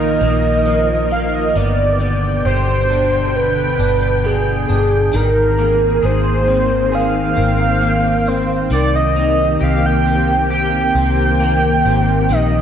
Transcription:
Already playing: fingered electric bass A#1, string machine D#3 A#3 F4 A#4, clean electric guitar F3 A#3 D#4, soft synth lead D#5
0.21 fingered electric bass A#1, clean electric guitar A#3
0.66 clean electric guitar F3
1.11 clean electric guitar A#3, soft synth lead F5
1.35 soft synth lead D#5
1.54 fingered electric bass G1, string machine B2 D3 G5, clean electric guitar B3, soft synth lead D5
2.00 clean electric guitar B3
2.45 fingered electric bass G1, clean electric guitar G4, soft synth lead C5
2.90 clean electric guitar D4
3.36 soft synth lead B4
3.79 fingered electric bass G1, clean electric guitar D4
4.24 clean electric guitar B3, soft synth lead G#4
4.69 fingered electric bass G1, clean electric guitar D4
5.13 fingered electric bass G#1, clean electric guitar D#3, string machine D#3 A#3 C4 G#4, soft synth lead A#4
5.58 clean electric guitar A#3
6.03 fingered electric bass G#1, clean electric guitar G#4, soft synth lead C5
6.47 clean electric guitar C4
6.90 clean electric guitar G#4, string machine G5
6.95 soft synth lead F5
7.37 fingered electric bass G#1, clean electric guitar C4
7.81 clean electric guitar A#3
8.26 clean electric guitar C4, soft synth lead C5
8.70 fingered electric bass C2, string machine D#3 A#3 G4, clean electric guitar D#3, soft synth lead D5
8.95 soft synth lead D#5
9.16 clean electric guitar A#3
9.60 fingered electric bass C2, clean electric guitar G4, soft synth lead F5
9.86 soft synth lead G5
10.06 clean electric guitar C4
10.50 clean electric guitar G4, soft synth lead G5
10.95 fingered electric bass C2, clean electric guitar C4
11.40 clean electric guitar A#3
11.85 fingered electric bass G#1, clean electric guitar C4
12.29 fingered electric bass A#1, clean electric guitar D#3, string machine F3 A#3 F4, soft synth lead D#5

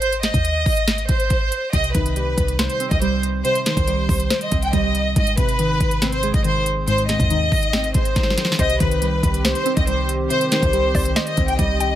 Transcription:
Already playing: 808-style bass G#1
0.02 violin section C5, closed hi-hat
0.12 closed hi-hat
0.23 violin section D#5, snare, closed hi-hat
0.34 808-style bass D#2, kick, closed hi-hat
0.45 closed hi-hat
0.66 808-style bass G#1, kick, open hi-hat
0.77 closed hi-hat
0.88 snare, closed hi-hat
0.98 closed hi-hat
1.09 808-style bass G#1, violin section C5, kick, closed hi-hat
1.20 closed hi-hat
1.30 808-style bass G#1, kick, closed hi-hat
1.52 closed hi-hat
1.73 808-style bass C2, synth keys C3, violin section D#5, kick, closed hi-hat
1.84 closed hi-hat
1.95 808-style bass C2, synth keys D#3, violin section B4, kick, closed hi-hat
2.06 closed hi-hat
2.16 synth keys G3, closed hi-hat
2.38 808-style bass C2, kick, closed hi-hat
2.48 closed hi-hat
2.59 synth keys C5, snare, closed hi-hat
2.69 violin section C5, closed hi-hat
2.80 synth keys C4, closed hi-hat
2.91 808-style bass C2, violin section D#5, kick, closed hi-hat
3.02 synth keys G3, violin section C5, closed hi-hat
3.23 closed hi-hat
3.45 synth keys C3, violin section C5, closed hi-hat
3.55 closed hi-hat
3.66 synth keys D#3, violin section C5, snare, closed hi-hat
3.77 808-style bass C2, kick, closed hi-hat
3.88 synth keys G3, closed hi-hat
4.09 808-style bass C2, kick, open hi-hat
4.20 closed hi-hat
4.30 synth keys C5, snare, closed hi-hat
4.41 violin section D#5, closed hi-hat
4.51 808-style bass C2, synth keys C4, kick, closed hi-hat
4.62 violin section G5, closed hi-hat
4.73 808-style bass C2, synth keys G3, violin section D#5, kick, closed hi-hat
4.95 closed hi-hat
5.16 808-style bass G#1, synth keys G#2, violin section D#5, kick, closed hi-hat
5.27 closed hi-hat
5.37 808-style bass G#1, synth keys C3, violin section B4, kick, closed hi-hat
5.49 closed hi-hat
5.59 synth keys D#3, closed hi-hat
5.80 808-style bass G#1, kick, closed hi-hat
5.91 closed hi-hat
6.02 synth keys C4, snare, closed hi-hat
6.12 violin section C5, closed hi-hat
6.23 synth keys G#3, closed hi-hat
6.34 808-style bass G#1, violin section D#5, kick, closed hi-hat
6.44 synth keys D#3, violin section C5, closed hi-hat
6.66 closed hi-hat
6.88 synth keys G#2, violin section C5, closed hi-hat
6.98 closed hi-hat
7.09 synth keys C3, violin section D#5, snare, closed hi-hat
7.20 808-style bass D#2, kick, closed hi-hat
7.30 synth keys D#3, closed hi-hat
7.52 808-style bass G#1, kick, open hi-hat
7.63 closed hi-hat
7.73 synth keys C4, snare, closed hi-hat
7.84 closed hi-hat
7.94 808-style bass G#1, synth keys G#3, violin section C5, kick, closed hi-hat
8.05 closed hi-hat
8.16 808-style bass G#1, synth keys D#3, kick, snare, closed hi-hat
8.23 snare
8.30 snare
8.38 snare, closed hi-hat
8.45 snare
8.52 snare
8.59 808-style bass C2, synth keys C3, analog synth pad D#3 C4 G4, synth pluck C5, violin section D#5, kick, closed hi-hat
8.70 closed hi-hat
8.80 808-style bass C2, synth keys D#3, violin section B4, kick, closed hi-hat
8.91 closed hi-hat
9.02 synth keys G3, closed hi-hat
9.23 808-style bass C2, kick, closed hi-hat
9.34 closed hi-hat
9.45 synth keys C5, snare, closed hi-hat
9.55 violin section C5, closed hi-hat
9.66 synth keys C4, closed hi-hat
9.77 808-style bass C2, violin section D#5, kick, closed hi-hat
9.87 synth keys G3, violin section C5, closed hi-hat
10.09 closed hi-hat
10.30 synth keys C3, violin section C5, closed hi-hat
10.41 closed hi-hat
10.52 synth keys D#3, violin section C5, snare, closed hi-hat
10.63 808-style bass C2, kick, closed hi-hat
10.73 synth keys G3, closed hi-hat
10.95 808-style bass C2, synth pluck D5, kick, open hi-hat
11.05 closed hi-hat
11.16 synth keys C5, synth pluck D#5, snare, closed hi-hat
11.27 violin section D#5, closed hi-hat
11.37 808-style bass C2, synth keys C4, kick, closed hi-hat
11.48 violin section G5, closed hi-hat
11.59 808-style bass C2, synth keys G3, violin section D#5, kick, closed hi-hat
11.80 synth pluck G5, closed hi-hat

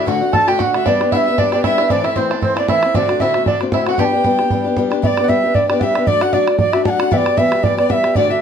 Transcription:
0.06 steel-string acoustic guitar D2 A2 D3 A3 D4 F#4, five-string banjo F#4, flute F#5, fiddle F#5, bodhran
0.21 steel-string acoustic guitar D3 A3 D4 F#4
0.32 steel-string acoustic guitar D3 A3 D4 F#4, five-string banjo A4, flute A5, fiddle A5, bodhran
0.47 steel-string acoustic guitar D3 A3 D4 F#4, five-string banjo G4, flute G5, fiddle G5, bodhran
0.59 steel-string acoustic guitar D2 A2 D3 A3 D4 F#4, five-string banjo F#4, flute F#5, fiddle F#5, bodhran
0.74 steel-string acoustic guitar D3 A3 D4 F#4, fiddle E5, bodhran
0.85 steel-string acoustic guitar G3 B3 D4 G4, five-string banjo D4, fiddle D5, flute D5, bodhran
1.00 steel-string acoustic guitar B3 D4 G4, bodhran
1.10 steel-string acoustic guitar G3 B3 D4, five-string banjo E4, fiddle E5, flute F#5, bodhran
1.15 steel-string acoustic guitar G4, flute E5
1.25 steel-string acoustic guitar G4, fiddle E5
1.29 steel-string acoustic guitar B3 D4
1.38 steel-string acoustic guitar G3 B3 D4 G4, five-string banjo D4, fiddle D5, flute D5, bodhran
1.50 five-string banjo D4, steel-string acoustic guitar D4 G4, fiddle D5, flute D5, bodhran
1.55 steel-string acoustic guitar B3
1.62 steel-string acoustic guitar G3 B3 D4, five-string banjo E4, fiddle E5, flute E5, bodhran
1.67 steel-string acoustic guitar G4
1.77 steel-string acoustic guitar B3 D4 G4, five-string banjo E4, bodhran
1.89 steel-string acoustic guitar A2 E3 A3 C4 E4, five-string banjo D4, fiddle D5, flute D5, bodhran
2.03 steel-string acoustic guitar A3 C4 E4, five-string banjo E4, fiddle E5, flute E5, bodhran
2.15 steel-string acoustic guitar A2 E3 A3 C4 E4, five-string banjo C4, flute C5, fiddle C5, bodhran
2.29 steel-string acoustic guitar A3 C4 E4, five-string banjo D4, bodhran
2.41 steel-string acoustic guitar E3 A3 C4 E4, five-string banjo C4, fiddle C5, flute C5, bodhran
2.56 steel-string acoustic guitar A3 C4 E4, five-string banjo D4, flute D5, fiddle D5, bodhran
2.68 steel-string acoustic guitar A2 E3 A3 C4 E4, five-string banjo E4, fiddle E5, flute E5, bodhran
2.82 steel-string acoustic guitar A3 C4 E4, bodhran
2.94 steel-string acoustic guitar D2 A2 D3 A3 C4 F#4, five-string banjo D4, fiddle D5, flute D5, bodhran
3.08 steel-string acoustic guitar D3 A3 C4 F#4, bodhran
3.20 steel-string acoustic guitar D2 A2 D3 A3 C4 F#4, five-string banjo E4, flute E5, fiddle E5, bodhran
3.34 steel-string acoustic guitar D3 A3 C4 F#4, bodhran
3.46 steel-string acoustic guitar D3 A3 C4 F#4, five-string banjo D4, flute D5, fiddle D5, bodhran
3.60 steel-string acoustic guitar D3 A3 C4 F#4, bodhran
3.72 steel-string acoustic guitar D2 A2 D3 A3 C4 F#4, five-string banjo E4, flute E5, fiddle E5, bodhran
3.87 steel-string acoustic guitar D3 A3 C4 F#4, five-string banjo F#4, fiddle F#5, flute F#5, bodhran
3.98 steel-string acoustic guitar G3 B3 D4 G4, five-string banjo G4, fiddle G5, flute A5, bodhran
4.05 flute G5
4.12 steel-string acoustic guitar B3 D4 G4
4.24 steel-string acoustic guitar G3 B3 D4 G4, bodhran
4.39 steel-string acoustic guitar B3 D4 G4, bodhran
4.50 steel-string acoustic guitar G3 B3 D4 G4, bodhran
4.64 steel-string acoustic guitar B3 D4 G4
4.76 steel-string acoustic guitar G3 B3 D4 G4, bodhran
4.90 steel-string acoustic guitar B3 D4 G4, bodhran
5.02 steel-string acoustic guitar G3 B3 D4 G4, fiddle D5, flute E5, bodhran
5.07 flute D5
5.17 steel-string acoustic guitar B3 D4 G4, bodhran
5.24 fiddle F#5
5.28 steel-string acoustic guitar G3 B3 D4 G4, flute E5, fiddle E5, bodhran
5.43 steel-string acoustic guitar B3 D4 G4
5.54 steel-string acoustic guitar G3 B3 D4 G4, flute D5, fiddle D5, bodhran
5.69 steel-string acoustic guitar B3 D4 G4, fiddle D5, flute D5, bodhran
5.80 steel-string acoustic guitar G3 B3 D4 G4, fiddle E5, flute E5 F#5, bodhran
5.95 steel-string acoustic guitar B3 D4 G4, bodhran
6.06 steel-string acoustic guitar F#3 A3 D4 F#4, fiddle D5, flute D5, bodhran
6.21 steel-string acoustic guitar A3 D4 F#4, flute F#5, fiddle F#5, bodhran
6.33 steel-string acoustic guitar F#3 A3 D4 F#4, flute D5, fiddle D5, bodhran
6.47 steel-string acoustic guitar A3 D4 F#4, bodhran
6.59 steel-string acoustic guitar F#3 A3 D4 F#4, flute D5, fiddle D5, bodhran
6.73 steel-string acoustic guitar A3 D4 F#4, flute E5, bodhran
6.85 steel-string acoustic guitar F#3 A3 D4 F#4, fiddle F#5, flute A5, bodhran
6.90 flute F#5
6.99 steel-string acoustic guitar A3 D4 F#4, bodhran
7.11 steel-string acoustic guitar E3 G3 B3 G4, fiddle D5, flute E5, bodhran
7.17 flute D5
7.25 steel-string acoustic guitar G3 B3 G4, bodhran
7.37 steel-string acoustic guitar E3 G3 B3 G4, fiddle E5, flute E5, bodhran
7.51 steel-string acoustic guitar G3 B3 G4, bodhran
7.63 steel-string acoustic guitar E3 G3 B3 G4, flute D5, fiddle D5, bodhran
7.77 steel-string acoustic guitar G3 B3 G4, flute D5, fiddle D5, bodhran
7.89 steel-string acoustic guitar E3 G3 B3 G4, fiddle E5, flute E5 F#5, bodhran
8.03 steel-string acoustic guitar G3 B3 G4, bodhran
8.15 steel-string acoustic guitar D2 A2 D3 A3 D4 F#4, fiddle D5, flute D5, bodhran
8.29 steel-string acoustic guitar D3 A3 D4 F#4, fiddle E5, flute E5

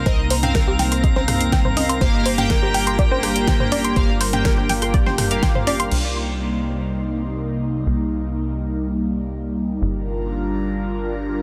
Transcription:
Already playing: analog synth pad C3 G3 A#3 D#4, synth texture A#5
0.06 analog synth bass C2, analog polysynth C4 A#4 D#5, synth arpeggio sound C5, kick, closed hi-hat
0.30 synth arpeggio sound C5, open hi-hat
0.43 analog polysynth C4 A#4 F5, synth arpeggio sound G5, closed hi-hat, mid tom, high conga
0.55 synth arpeggio sound A#4, kick, cross-stick, snare, closed hi-hat
0.68 synth arpeggio sound G4
0.79 synth arpeggio sound G5, snare, open hi-hat
0.92 synth arpeggio sound C6, closed hi-hat
1.04 synth arpeggio sound D#5, kick, closed hi-hat
1.16 synth arpeggio sound C5, snare, high conga
1.28 cross-stick, mid tom, open hi-hat
1.41 closed hi-hat
1.52 synth arpeggio sound G5, kick, snare, closed hi-hat
1.65 synth arpeggio sound C5, mid tom
1.77 synth arpeggio sound D#5, open hi-hat, high conga
1.89 synth arpeggio sound C6, closed hi-hat
2.01 analog synth bass G1, analog synth pad G3 D4 F4 A#4, analog polysynth A#3 G4 F5, synth arpeggio sound C5, kick, closed hi-hat
2.26 synth arpeggio sound C5, open hi-hat
2.38 analog polysynth A#3 G4 G5, synth arpeggio sound G5, closed hi-hat, mid tom, high conga
2.50 synth arpeggio sound A#4, kick, cross-stick, snare, closed hi-hat
2.63 synth arpeggio sound G4
2.74 synth arpeggio sound G5, open hi-hat
2.87 synth arpeggio sound C6, closed hi-hat
2.99 synth arpeggio sound D5, kick, closed hi-hat
3.11 synth arpeggio sound C5, high conga
3.23 cross-stick, open hi-hat
3.36 closed hi-hat
3.48 synth arpeggio sound G5, kick, snare, closed hi-hat
3.60 synth arpeggio sound C5, mid tom
3.72 synth arpeggio sound D5, open hi-hat, high conga
3.84 synth arpeggio sound C6, closed hi-hat
3.96 analog synth bass G1, analog polysynth A#3 G4 F5, synth arpeggio sound C5, kick, closed hi-hat
4.21 synth arpeggio sound C5, open hi-hat
4.33 analog polysynth A#3 G4 G5, synth arpeggio sound G5, closed hi-hat, mid tom, high conga
4.45 synth arpeggio sound A#4, kick, cross-stick, snare, closed hi-hat
4.58 synth arpeggio sound G4
4.69 synth arpeggio sound G5, snare, open hi-hat
4.82 synth arpeggio sound C6, cross-stick, closed hi-hat
4.94 synth arpeggio sound D5, kick, closed hi-hat
5.06 synth arpeggio sound C5, snare, high conga
5.18 cross-stick, mid tom, open hi-hat
5.31 analog polysynth A#3 G4 F5, closed hi-hat
5.43 synth arpeggio sound G5, kick, snare, closed hi-hat
5.55 synth arpeggio sound C5, mid tom
5.67 analog polysynth A#3 G4 F5, synth arpeggio sound D5, open hi-hat, high conga
5.80 synth arpeggio sound C6, closed hi-hat
5.91 analog synth bass C2, analog synth pad C3 G3 A#3 D#4, crash
7.87 analog synth bass C2
9.82 analog synth bass G1, analog synth pad D4 F4 A#4

